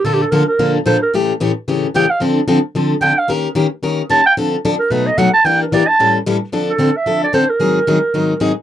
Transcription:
X:1
M:4/4
L:1/8
Q:"Swing" 1/4=222
K:Dm
V:1 name="Clarinet"
(3A G A B B2 z c B | z6 g f | z6 g f | z6 a g |
z3 B =B ^d ^f a | g B d a2 z3 | z A2 e2 d c B- | B6- B z |]
V:2 name="Steel-string acoustic guitar"
[B,,D,F,B,DA] z [B,,D,F,B,DA] z [B,,D,F,B,DA] z [B,,D,F,B,DA] z | [A,,^C,E,A,^CG] z [A,,C,E,A,CG] z [A,,C,E,A,CG] z [A,,C,E,A,CG] z | [D,F,CDA] z [D,F,CDA] z [D,F,CDA] z [D,F,CDA] z | [_E,B,_DGB] z [E,B,DGB] z [E,B,DGB] z [E,B,DGB] z |
[D,F,CDA] z [D,F,CDA] z [=B,,^F,A,^D^F] z [B,,F,A,DF] z | [E,B,DG] z [E,B,DG] z [A,,E,G,^CEA] z [A,,E,G,CEA] z | [D,F,CDA] z [D,F,CDA] z [D,F,CDA] z [D,F,CDA] z | [^G,,^D,^F,^B,^D^G] z [G,,D,F,B,DG] z [G,,D,F,B,DG] z [G,,D,F,B,DG] z |]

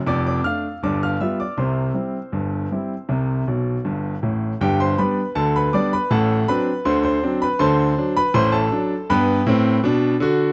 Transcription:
X:1
M:2/4
L:1/16
Q:1/4=80
K:C
V:1 name="Grand piano"
[dd'] [dd'] [ff']2 [dd'] [ff'] [ee'] [dd'] | [cc']8- | [cc']4 z4 | [K:G] [Gg] [cc'] [Bb]2 [Aa] [Bb] [dd'] [Bb] |
[Afa]2 [Bb]2 [cc'] [cc']2 [Bb] | [cac']3 [Bb] [cc'] [Aa]3 | [Bgb]6 z2 |]
V:2 name="Grand piano" clef=bass
[F,,,F,,]2 [A,D]2 [G,,,G,,]2 [G,B,F]2 | [C,,C,]2 [G,CE]2 [G,,,G,,]2 [G,CE]2 | [C,,C,]2 [B,,,B,,]2 [G,,,G,,]2 [A,,,A,,]2 | [K:G] [G,,,G,,]2 [G,B,D]2 [D,,D,]2 [G,B,D]2 |
[A,,,A,,]2 [F,CD]2 [D,,D,]2 [F,CD]2 | [D,,D,]2 [F,D]2 [A,,,A,,]2 [F,D]2 | [G,,B,]2 [A,,C]2 [B,,D]2 [D,F]2 |]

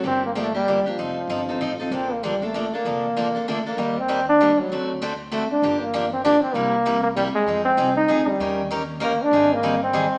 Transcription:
X:1
M:3/4
L:1/16
Q:"Swing" 1/4=194
K:Bb
V:1 name="Steel-string acoustic guitar"
[D,F,B,DG]2 z2 [D,F,B,DG]2 [B,DG]2 [D,F,B,DG]2 [B,DG]2 | [F,CEA]2 z2 [F,CEA]2 [CEA]2 [F,CEA]2 [CEA]2 | [D,F,B,DA]2 z2 [D,F,B,DA]2 [B,DA]2 [D,F,B,DA]2 [B,DA]2 | [D,F,B,DA]2 z2 [D,F,B,DA]2 [B,DA]2 [D,F,B,DA]2 [B,DA]2 |
[K:Eb] [E,G,B,DG]2 z2 [E,G,B,DG]2 z2 [E,G,B,DG]2 z2 | [D,=A,C^F=A]2 z2 [D,A,CFA]2 z2 [D,A,CFA]2 z2 | [D,F,B,DG]2 z2 [D,F,B,DG]2 z2 [D,F,B,DG]2 z2 | [C,G,B,=EG]2 z2 [C,G,B,EG]2 z2 [C,G,B,EG]2 z2 |
[F,CEA]2 z2 [F,CEA]2 z2 [F,CEA]2 z2 | [E,B,_DGB]2 z2 [E,B,DGB]2 z2 [E,B,DGB]2 z2 | [E,G,CEA]2 z2 [E,G,CEA]2 z2 [E,G,CEA]2 z2 |]
V:2 name="Trombone"
C2 B,3/2 _A,/2 =A,2 G,4 F,2- | F,8- F,2 F,2 | C2 B,2 G,2 A,4 B,2- | B,8 A,2 B,2- |
[K:Eb] B,2 C4 D4 _G,2- | _G,4 z4 =A,2 D2- | D2 B,4 C2 D2 C2 | B,6 B,2 G,2 A,2- |
A,2 C4 E4 G,2- | G,4 z4 B,2 D2- | D2 B,4 C6 |]
V:3 name="Upright bass" clef=bass
G,,,12 | F,,,4 G,,,4 A,,,4 | B,,,12 | F,,,8 z4 |
[K:Eb] E,,12 | D,,12 | G,,,12 | C,,12 |
F,,4 C,,4 D,,4 | E,,12 | A,,,12 |]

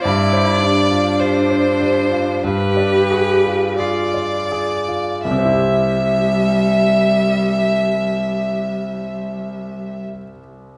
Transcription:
X:1
M:4/4
L:1/16
Q:1/4=43
K:C
V:1 name="Violin"
d4 c4 B4 d4 | e16 |]
V:2 name="Grand piano"
G,, c G F G c G F G,, d _A F A d A F | [C,,C,CEGe]16 |]
V:3 name="Cello"
E2 D6 G4 F2 z2 | G,16 |]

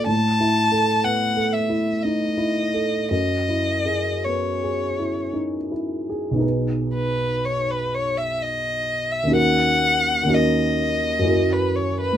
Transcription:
X:1
M:3/4
L:1/16
Q:1/4=60
K:Bmix
V:1 name="Violin"
a4 f2 e2 d4 | d4 c4 z4 | z2 B2 c B c e d3 e | f4 d4- d B c B |]
V:2 name="Grand piano"
(3A,,2 E2 A2 (3B,2 A2 E2 (3D2 E2 A2 | (3F,,2 E2 G2 (3B,2 G2 E2 (3D2 E2 G2 | [B,,,B,DGB]12 | [D,,CDF^A]4 [D,,CDFA]4 [F,,CEFA]4 |]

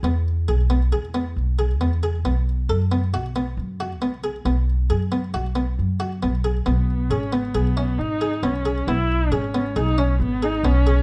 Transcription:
X:1
M:5/4
L:1/8
Q:1/4=136
K:C#dor
V:1 name="Harpsichord"
B,2 G B, G B,2 G B, G | B,2 =A B, F B,2 F B, G | B,2 G B, F B,2 F B, G | B,2 G B, G C2 G B, G |
B,2 G B, G C2 G B, G |]
V:2 name="Viola"
z8 z2 | z8 z2 | z8 z2 | B,2 C B,3 D2 C2 |
E2 C2 D C B, D C2 |]
V:3 name="Upright bass" clef=bass
E,,2 B,,,2 E,,2 B,,,2 E,,2 | B,,,2 F,,2 B,,,2 F,,2 B,,,2 | B,,,2 F,,2 B,,,2 F,,2 B,,,2 | B,,,2 G,,,2 B,,,2 G,,,2 B,,,2 |
B,,,2 G,,,2 B,,,2 G,,,2 B,,,2 |]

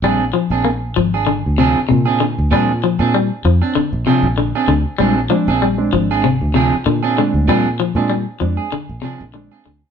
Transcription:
X:1
M:4/4
L:1/16
Q:"Swing 16ths" 1/4=97
K:Bbmix
V:1 name="Clean electric guitar"
[CDA] z2 [CDA] z3 [DA] z2 [F,CDA] z2 [CDA] z2 | [F,CDA] z2 [CDA] z3 [CD] z2 [F,CDA] z2 [CDA] z2 | [F,CDA] z2 [CDA] z3 [CDA] z2 [F,CDA] z2 [CDA] z2 | [F,CDA] z2 [CDA] z3 A z2 [F,CDA] z2 [CDA] z2 |]
V:2 name="Reed electric piano"
z16 | z16 | [A,CD] z [A,CD] z2 [A,CD]3 z6 [A,CD]2 | z3 [A,CD] z2 [A,CD]2 z2 [CD] [CD] [A,CD]2 z2 |]
V:3 name="Clean electric guitar" clef=bass
G,2 F,2 B,2 F,2 D,2 C,2 C,2 D,2 | G,2 F,2 G,2 F,2 D,2 C,2 D,2 D,2 | G,2 F,2 G,2 F,2 C,2 C,2 D,2 D,2 | G,2 F,2 G,2 F,2 D,2 C,2 D,2 D,2 |]
V:4 name="Fingered electric bass" clef=bass
B,,,2 z B,,,3 A,,,3 D,,2 z B,,3 D,, | B,,3 B,,2 z F,, z2 B,,, z B,,,2 z D,, z | B,,,2 z B,,,3 A,,,3 D,,2 z B,,3 D,, | B,,3 B,,2 z F,, z2 B,,, z B,,,2 z D,, z |]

